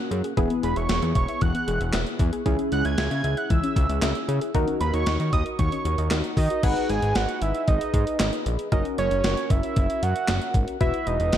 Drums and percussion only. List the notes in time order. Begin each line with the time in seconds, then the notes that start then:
0.11 closed hi-hat
0.24 closed hi-hat
0.37 kick, closed hi-hat
0.50 closed hi-hat
0.63 closed hi-hat
0.76 closed hi-hat
0.89 snare, closed hi-hat
1.02 closed hi-hat
1.15 kick, closed hi-hat
1.28 closed hi-hat
1.41 kick, closed hi-hat
1.55 closed hi-hat
1.68 closed hi-hat
1.81 closed hi-hat
1.93 snare, clap, closed hi-hat
2.07 closed hi-hat
2.19 kick, closed hi-hat
2.33 closed hi-hat
2.46 kick, closed hi-hat
2.59 closed hi-hat
2.72 closed hi-hat
2.85 closed hi-hat
2.98 snare, closed hi-hat
3.11 closed hi-hat
3.24 closed hi-hat
3.37 closed hi-hat
3.50 kick, closed hi-hat
3.64 closed hi-hat
3.76 kick, closed hi-hat
3.90 closed hi-hat
4.02 snare, clap, closed hi-hat
4.15 closed hi-hat
4.29 closed hi-hat
4.41 closed hi-hat
4.55 kick, closed hi-hat
4.68 closed hi-hat
4.81 closed hi-hat
4.94 closed hi-hat
5.06 snare, closed hi-hat
5.20 closed hi-hat
5.33 kick, closed hi-hat
5.46 closed hi-hat
5.59 kick, closed hi-hat
5.72 closed hi-hat
5.85 closed hi-hat
5.98 closed hi-hat
6.11 snare, clap, closed hi-hat
6.24 closed hi-hat
6.37 kick, open hi-hat
6.50 closed hi-hat
6.63 kick, closed hi-hat, crash
6.76 closed hi-hat
6.89 closed hi-hat
7.02 closed hi-hat
7.15 snare, closed hi-hat
7.29 closed hi-hat
7.42 closed hi-hat
7.55 closed hi-hat
7.68 kick, closed hi-hat
7.81 closed hi-hat
7.94 kick, closed hi-hat
8.07 closed hi-hat
8.20 snare, clap, closed hi-hat
8.33 closed hi-hat
8.46 closed hi-hat
8.59 closed hi-hat
8.72 kick, closed hi-hat
8.85 closed hi-hat
8.98 closed hi-hat
9.11 closed hi-hat
9.24 snare, closed hi-hat
9.37 closed hi-hat
9.50 kick, closed hi-hat
9.63 closed hi-hat
9.76 kick, closed hi-hat
9.90 closed hi-hat
10.03 closed hi-hat
10.16 closed hi-hat
10.28 snare, clap, closed hi-hat
10.42 closed hi-hat
10.54 kick, closed hi-hat
10.68 closed hi-hat
10.81 kick, closed hi-hat
10.94 closed hi-hat
11.07 closed hi-hat
11.20 closed hi-hat
11.33 snare, closed hi-hat